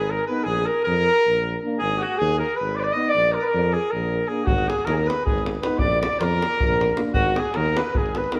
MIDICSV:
0, 0, Header, 1, 7, 480
1, 0, Start_track
1, 0, Tempo, 383142
1, 566, Time_signature, 7, 3, 24, 8
1, 10520, End_track
2, 0, Start_track
2, 0, Title_t, "Alto saxophone"
2, 0, Program_c, 0, 65
2, 0, Note_on_c, 0, 68, 78
2, 140, Note_on_c, 0, 70, 72
2, 159, Note_off_c, 0, 68, 0
2, 323, Note_off_c, 0, 70, 0
2, 330, Note_on_c, 0, 71, 79
2, 554, Note_on_c, 0, 68, 95
2, 573, Note_off_c, 0, 71, 0
2, 839, Note_on_c, 0, 70, 79
2, 857, Note_off_c, 0, 68, 0
2, 1059, Note_off_c, 0, 70, 0
2, 1067, Note_on_c, 0, 70, 96
2, 1987, Note_off_c, 0, 70, 0
2, 2236, Note_on_c, 0, 68, 103
2, 2528, Note_on_c, 0, 66, 83
2, 2547, Note_off_c, 0, 68, 0
2, 2736, Note_on_c, 0, 68, 75
2, 2755, Note_off_c, 0, 66, 0
2, 3005, Note_off_c, 0, 68, 0
2, 3013, Note_on_c, 0, 70, 82
2, 3223, Note_on_c, 0, 71, 74
2, 3241, Note_off_c, 0, 70, 0
2, 3471, Note_on_c, 0, 74, 87
2, 3490, Note_off_c, 0, 71, 0
2, 3542, Note_on_c, 0, 71, 67
2, 3561, Note_off_c, 0, 74, 0
2, 3594, Note_on_c, 0, 74, 87
2, 3612, Note_off_c, 0, 71, 0
2, 3684, Note_on_c, 0, 75, 90
2, 3703, Note_off_c, 0, 74, 0
2, 3857, Note_on_c, 0, 74, 123
2, 3876, Note_off_c, 0, 75, 0
2, 4154, Note_on_c, 0, 70, 75
2, 4173, Note_off_c, 0, 74, 0
2, 4265, Note_on_c, 0, 71, 77
2, 4284, Note_off_c, 0, 70, 0
2, 4316, Note_on_c, 0, 70, 84
2, 4335, Note_off_c, 0, 71, 0
2, 4662, Note_on_c, 0, 68, 88
2, 4681, Note_off_c, 0, 70, 0
2, 4903, Note_on_c, 0, 70, 75
2, 4922, Note_off_c, 0, 68, 0
2, 5354, Note_on_c, 0, 68, 74
2, 5373, Note_off_c, 0, 70, 0
2, 5589, Note_on_c, 0, 66, 84
2, 5608, Note_off_c, 0, 68, 0
2, 5860, Note_on_c, 0, 68, 79
2, 5878, Note_off_c, 0, 66, 0
2, 6073, Note_on_c, 0, 70, 82
2, 6092, Note_off_c, 0, 68, 0
2, 6155, Note_on_c, 0, 68, 68
2, 6173, Note_off_c, 0, 70, 0
2, 6204, Note_on_c, 0, 70, 88
2, 6223, Note_off_c, 0, 68, 0
2, 6348, Note_on_c, 0, 71, 85
2, 6366, Note_off_c, 0, 70, 0
2, 6571, Note_off_c, 0, 71, 0
2, 6578, Note_on_c, 0, 68, 67
2, 6829, Note_off_c, 0, 68, 0
2, 7038, Note_on_c, 0, 71, 73
2, 7246, Note_on_c, 0, 74, 92
2, 7264, Note_off_c, 0, 71, 0
2, 7518, Note_off_c, 0, 74, 0
2, 7526, Note_on_c, 0, 74, 84
2, 7753, Note_on_c, 0, 70, 98
2, 7772, Note_off_c, 0, 74, 0
2, 8738, Note_off_c, 0, 70, 0
2, 8937, Note_on_c, 0, 66, 96
2, 9220, Note_on_c, 0, 68, 77
2, 9239, Note_off_c, 0, 66, 0
2, 9443, Note_on_c, 0, 70, 77
2, 9461, Note_off_c, 0, 68, 0
2, 9728, Note_on_c, 0, 71, 85
2, 9747, Note_off_c, 0, 70, 0
2, 9961, Note_on_c, 0, 68, 71
2, 9979, Note_off_c, 0, 71, 0
2, 10213, Note_on_c, 0, 71, 68
2, 10232, Note_off_c, 0, 68, 0
2, 10408, Note_on_c, 0, 70, 72
2, 10427, Note_off_c, 0, 71, 0
2, 10520, Note_off_c, 0, 70, 0
2, 10520, End_track
3, 0, Start_track
3, 0, Title_t, "Flugelhorn"
3, 0, Program_c, 1, 56
3, 0, Note_on_c, 1, 68, 97
3, 126, Note_on_c, 1, 70, 86
3, 145, Note_off_c, 1, 68, 0
3, 336, Note_off_c, 1, 70, 0
3, 343, Note_on_c, 1, 71, 87
3, 542, Note_on_c, 1, 68, 89
3, 561, Note_off_c, 1, 71, 0
3, 820, Note_on_c, 1, 70, 91
3, 839, Note_off_c, 1, 68, 0
3, 1051, Note_off_c, 1, 70, 0
3, 1058, Note_on_c, 1, 70, 122
3, 1983, Note_off_c, 1, 70, 0
3, 2228, Note_on_c, 1, 68, 100
3, 2482, Note_on_c, 1, 66, 90
3, 2501, Note_off_c, 1, 68, 0
3, 2712, Note_on_c, 1, 68, 121
3, 2731, Note_off_c, 1, 66, 0
3, 2981, Note_off_c, 1, 68, 0
3, 2989, Note_on_c, 1, 70, 94
3, 3204, Note_on_c, 1, 71, 95
3, 3222, Note_off_c, 1, 70, 0
3, 3452, Note_on_c, 1, 74, 103
3, 3471, Note_off_c, 1, 71, 0
3, 3506, Note_on_c, 1, 71, 82
3, 3525, Note_off_c, 1, 74, 0
3, 3553, Note_on_c, 1, 74, 96
3, 3572, Note_off_c, 1, 71, 0
3, 3654, Note_on_c, 1, 75, 102
3, 3673, Note_off_c, 1, 74, 0
3, 3884, Note_on_c, 1, 74, 101
3, 3903, Note_off_c, 1, 75, 0
3, 4190, Note_on_c, 1, 70, 93
3, 4209, Note_off_c, 1, 74, 0
3, 4287, Note_on_c, 1, 71, 82
3, 4306, Note_off_c, 1, 70, 0
3, 4327, Note_on_c, 1, 70, 103
3, 4346, Note_off_c, 1, 71, 0
3, 4679, Note_on_c, 1, 68, 90
3, 4698, Note_off_c, 1, 70, 0
3, 4896, Note_on_c, 1, 70, 98
3, 4915, Note_off_c, 1, 68, 0
3, 5364, Note_on_c, 1, 68, 80
3, 5383, Note_off_c, 1, 70, 0
3, 5567, Note_on_c, 1, 66, 88
3, 5586, Note_off_c, 1, 68, 0
3, 5881, Note_on_c, 1, 68, 78
3, 5900, Note_off_c, 1, 66, 0
3, 6076, Note_on_c, 1, 70, 105
3, 6095, Note_off_c, 1, 68, 0
3, 6173, Note_on_c, 1, 68, 85
3, 6192, Note_off_c, 1, 70, 0
3, 6198, Note_on_c, 1, 70, 92
3, 6217, Note_off_c, 1, 68, 0
3, 6361, Note_on_c, 1, 71, 84
3, 6380, Note_off_c, 1, 70, 0
3, 6578, Note_off_c, 1, 71, 0
3, 6585, Note_on_c, 1, 68, 90
3, 6832, Note_off_c, 1, 68, 0
3, 7043, Note_on_c, 1, 71, 80
3, 7240, Note_on_c, 1, 74, 85
3, 7259, Note_off_c, 1, 71, 0
3, 7528, Note_off_c, 1, 74, 0
3, 7536, Note_on_c, 1, 74, 92
3, 7796, Note_on_c, 1, 70, 117
3, 7815, Note_off_c, 1, 74, 0
3, 8759, Note_off_c, 1, 70, 0
3, 8951, Note_on_c, 1, 66, 102
3, 9256, Note_on_c, 1, 68, 92
3, 9275, Note_off_c, 1, 66, 0
3, 9468, Note_on_c, 1, 70, 109
3, 9487, Note_off_c, 1, 68, 0
3, 9743, Note_on_c, 1, 71, 90
3, 9762, Note_off_c, 1, 70, 0
3, 9994, Note_on_c, 1, 68, 83
3, 10013, Note_off_c, 1, 71, 0
3, 10242, Note_on_c, 1, 71, 89
3, 10261, Note_off_c, 1, 68, 0
3, 10461, Note_on_c, 1, 70, 78
3, 10480, Note_off_c, 1, 71, 0
3, 10520, Note_off_c, 1, 70, 0
3, 10520, End_track
4, 0, Start_track
4, 0, Title_t, "Euphonium"
4, 0, Program_c, 2, 58
4, 357, Note_on_c, 2, 63, 65
4, 555, Note_off_c, 2, 63, 0
4, 2056, Note_on_c, 2, 62, 72
4, 2250, Note_off_c, 2, 62, 0
4, 3698, Note_on_c, 2, 63, 68
4, 3899, Note_off_c, 2, 63, 0
4, 5393, Note_on_c, 2, 62, 60
4, 5590, Note_off_c, 2, 62, 0
4, 7065, Note_on_c, 2, 63, 68
4, 7264, Note_off_c, 2, 63, 0
4, 8739, Note_on_c, 2, 62, 65
4, 8940, Note_off_c, 2, 62, 0
4, 10434, Note_on_c, 2, 63, 73
4, 10520, Note_off_c, 2, 63, 0
4, 10520, End_track
5, 0, Start_track
5, 0, Title_t, "Euphonium"
5, 0, Program_c, 3, 58
5, 371, Note_on_c, 3, 59, 59
5, 566, Note_off_c, 3, 59, 0
5, 2065, Note_on_c, 3, 58, 66
5, 2257, Note_off_c, 3, 58, 0
5, 3704, Note_on_c, 3, 59, 57
5, 3904, Note_off_c, 3, 59, 0
5, 5380, Note_on_c, 3, 58, 53
5, 5581, Note_off_c, 3, 58, 0
5, 7067, Note_on_c, 3, 59, 61
5, 7266, Note_off_c, 3, 59, 0
5, 8735, Note_on_c, 3, 58, 65
5, 8937, Note_off_c, 3, 58, 0
5, 10443, Note_on_c, 3, 59, 54
5, 10520, Note_off_c, 3, 59, 0
5, 10520, End_track
6, 0, Start_track
6, 0, Title_t, "Tuba"
6, 0, Program_c, 4, 58
6, 0, Note_on_c, 4, 32, 80
6, 267, Note_off_c, 4, 32, 0
6, 571, Note_on_c, 4, 34, 92
6, 848, Note_off_c, 4, 34, 0
6, 1089, Note_on_c, 4, 41, 92
6, 1362, Note_off_c, 4, 41, 0
6, 1594, Note_on_c, 4, 34, 73
6, 1959, Note_off_c, 4, 34, 0
6, 2275, Note_on_c, 4, 32, 81
6, 2545, Note_off_c, 4, 32, 0
6, 2760, Note_on_c, 4, 39, 106
6, 3035, Note_off_c, 4, 39, 0
6, 3267, Note_on_c, 4, 32, 83
6, 3633, Note_off_c, 4, 32, 0
6, 3942, Note_on_c, 4, 34, 87
6, 4214, Note_off_c, 4, 34, 0
6, 4441, Note_on_c, 4, 41, 108
6, 4714, Note_off_c, 4, 41, 0
6, 4934, Note_on_c, 4, 34, 90
6, 5303, Note_off_c, 4, 34, 0
6, 5599, Note_on_c, 4, 32, 84
6, 5877, Note_off_c, 4, 32, 0
6, 6100, Note_on_c, 4, 39, 98
6, 6379, Note_off_c, 4, 39, 0
6, 6610, Note_on_c, 4, 32, 83
6, 6979, Note_off_c, 4, 32, 0
6, 7281, Note_on_c, 4, 34, 91
6, 7558, Note_off_c, 4, 34, 0
6, 7776, Note_on_c, 4, 41, 97
6, 8056, Note_off_c, 4, 41, 0
6, 8283, Note_on_c, 4, 34, 100
6, 8656, Note_off_c, 4, 34, 0
6, 8963, Note_on_c, 4, 32, 99
6, 9240, Note_off_c, 4, 32, 0
6, 9473, Note_on_c, 4, 39, 105
6, 9749, Note_off_c, 4, 39, 0
6, 9978, Note_on_c, 4, 32, 72
6, 10347, Note_off_c, 4, 32, 0
6, 10520, End_track
7, 0, Start_track
7, 0, Title_t, "Davul"
7, 5603, Note_on_c, 9, 43, 100
7, 5728, Note_off_c, 9, 43, 0
7, 5742, Note_on_c, 9, 37, 29
7, 5867, Note_off_c, 9, 37, 0
7, 5884, Note_on_c, 9, 37, 66
7, 5994, Note_off_c, 9, 37, 0
7, 5994, Note_on_c, 9, 37, 26
7, 6104, Note_off_c, 9, 37, 0
7, 6104, Note_on_c, 9, 37, 66
7, 6230, Note_off_c, 9, 37, 0
7, 6259, Note_on_c, 9, 37, 30
7, 6385, Note_off_c, 9, 37, 0
7, 6389, Note_on_c, 9, 37, 66
7, 6514, Note_off_c, 9, 37, 0
7, 6599, Note_on_c, 9, 43, 83
7, 6725, Note_off_c, 9, 43, 0
7, 6742, Note_on_c, 9, 37, 29
7, 6845, Note_off_c, 9, 37, 0
7, 6845, Note_on_c, 9, 37, 61
7, 6951, Note_off_c, 9, 37, 0
7, 6951, Note_on_c, 9, 37, 29
7, 7059, Note_off_c, 9, 37, 0
7, 7059, Note_on_c, 9, 37, 78
7, 7184, Note_off_c, 9, 37, 0
7, 7253, Note_on_c, 9, 43, 89
7, 7378, Note_off_c, 9, 43, 0
7, 7419, Note_on_c, 9, 37, 31
7, 7544, Note_off_c, 9, 37, 0
7, 7551, Note_on_c, 9, 37, 81
7, 7675, Note_off_c, 9, 37, 0
7, 7675, Note_on_c, 9, 37, 31
7, 7776, Note_off_c, 9, 37, 0
7, 7776, Note_on_c, 9, 37, 69
7, 7901, Note_off_c, 9, 37, 0
7, 7913, Note_on_c, 9, 37, 26
7, 8038, Note_off_c, 9, 37, 0
7, 8048, Note_on_c, 9, 37, 75
7, 8173, Note_off_c, 9, 37, 0
7, 8274, Note_on_c, 9, 43, 81
7, 8399, Note_off_c, 9, 43, 0
7, 8415, Note_on_c, 9, 37, 24
7, 8534, Note_off_c, 9, 37, 0
7, 8534, Note_on_c, 9, 37, 57
7, 8638, Note_off_c, 9, 37, 0
7, 8638, Note_on_c, 9, 37, 25
7, 8733, Note_off_c, 9, 37, 0
7, 8733, Note_on_c, 9, 37, 75
7, 8858, Note_off_c, 9, 37, 0
7, 8948, Note_on_c, 9, 43, 82
7, 9073, Note_off_c, 9, 43, 0
7, 9082, Note_on_c, 9, 37, 28
7, 9207, Note_off_c, 9, 37, 0
7, 9224, Note_on_c, 9, 37, 67
7, 9338, Note_off_c, 9, 37, 0
7, 9338, Note_on_c, 9, 37, 27
7, 9445, Note_off_c, 9, 37, 0
7, 9445, Note_on_c, 9, 37, 55
7, 9571, Note_off_c, 9, 37, 0
7, 9593, Note_on_c, 9, 37, 28
7, 9718, Note_off_c, 9, 37, 0
7, 9730, Note_on_c, 9, 37, 78
7, 9855, Note_off_c, 9, 37, 0
7, 9958, Note_on_c, 9, 43, 87
7, 10083, Note_off_c, 9, 43, 0
7, 10094, Note_on_c, 9, 37, 26
7, 10208, Note_off_c, 9, 37, 0
7, 10208, Note_on_c, 9, 37, 64
7, 10321, Note_off_c, 9, 37, 0
7, 10321, Note_on_c, 9, 37, 27
7, 10425, Note_off_c, 9, 37, 0
7, 10425, Note_on_c, 9, 37, 68
7, 10520, Note_off_c, 9, 37, 0
7, 10520, End_track
0, 0, End_of_file